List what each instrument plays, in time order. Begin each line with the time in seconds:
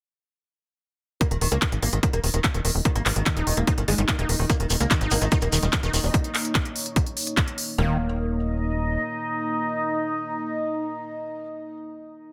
1.21 oud A#3, ambient pad A#3, kick, closed hi-hat
1.31 analog synth bass D#1, oud D#3, closed hi-hat
1.41 analog synth bass D#1, oud D#3, open hi-hat
1.47 ambient pad D#4 D#5 A#5
1.52 analog synth bass C#2, oud A#3, closed hi-hat
1.62 kick, clap, closed hi-hat
1.72 analog synth bass G#1, oud D#3, closed hi-hat
1.82 analog synth bass G#1, oud A#3, open hi-hat
1.93 analog synth bass G#1, oud D#3, closed hi-hat
2.03 oud D#3, kick, closed hi-hat
2.13 analog synth bass D#1, oud A#3, closed hi-hat
2.24 analog synth bass D#1, oud D#3, open hi-hat
2.34 analog synth bass D#1, oud D#3, closed hi-hat
2.44 kick, clap, closed hi-hat
2.54 analog synth bass D#1, oud D#3, closed hi-hat
2.65 analog synth bass D#1, oud D#3, open hi-hat
2.75 analog synth bass D#1
2.85 oud D#3, kick, closed hi-hat
2.95 analog synth bass G#1, oud A#3, closed hi-hat
3.06 analog synth bass G#1, oud D#3, clap, open hi-hat
3.16 analog synth bass G#1, oud D#3, closed hi-hat
3.26 acid bass D#3, kick, clap, closed hi-hat
3.37 analog synth bass D#1, oud D#3, acid bass D#4, closed hi-hat
3.47 analog synth bass D#1, oud D#3, open hi-hat
3.57 analog synth bass D#1, oud A#3, acid bass E4, closed hi-hat
3.67 oud D#3, acid bass D#4, kick, closed hi-hat
3.78 analog synth bass G1, oud D#3, closed hi-hat
3.88 analog synth bass G1, acid bass D#3, oud G#3, open hi-hat
3.98 analog synth bass G1, oud D#3, acid bass G3, closed hi-hat
4.09 oud D#3, acid bass D#3, kick, clap, closed hi-hat
4.19 analog synth bass D#1, oud A#3, acid bass D#4, closed hi-hat
4.29 analog synth bass D#1, oud D#3, open hi-hat
4.39 analog synth bass D#1, oud D#3
4.50 oud A#3, kick, closed hi-hat, shekere
4.60 analog synth bass D#1, oud D#3, closed hi-hat
4.70 analog synth bass D#1, oud D#3, open hi-hat, shekere
4.80 analog synth bass C#2, oud A#3, closed hi-hat, shekere
4.91 oud D#3, acid bass D#3, kick, clap, closed hi-hat, shekere
5.01 analog synth bass G#1, oud D#3, acid bass D#4, closed hi-hat, shekere
5.11 analog synth bass G#1, oud A#3, ambient pad C#5, open hi-hat, shekere
5.21 analog synth bass G#1, oud D#3, acid bass E4, closed hi-hat, shekere
5.32 oud D#3, acid bass D#4, kick, closed hi-hat, shekere
5.41 analog synth bass D#1, oud A#3, closed hi-hat, shekere
5.52 analog synth bass D#1, oud D#3, acid bass D#3, open hi-hat, shekere
5.62 analog synth bass D#1, oud D#3, acid bass G3, closed hi-hat, shekere
5.73 acid bass D#3, kick, clap, closed hi-hat, shekere
5.83 analog synth bass D#1, oud D#3, acid bass D#4, closed hi-hat, shekere
5.93 analog synth bass D#1, oud D#3, open hi-hat, shekere
6.03 analog synth bass D#1, wobble bass C#4, shekere
6.14 kick, closed hi-hat
6.24 closed hi-hat
6.35 clap, open hi-hat
6.45 closed hi-hat
6.55 kick, clap, closed hi-hat
6.65 closed hi-hat
6.76 open hi-hat
6.86 closed hi-hat
6.96 kick, closed hi-hat
7.06 closed hi-hat
7.17 open hi-hat
7.27 closed hi-hat
7.37 kick, clap, closed hi-hat
7.48 closed hi-hat
7.58 open hi-hat
7.78 analog synth bass D#1, acid bass D#3, oud A#3, ambient pad A#3, synth drone D#4 D#5
7.85 ambient pad D#4
7.91 ambient pad D#5
7.97 ambient pad A#5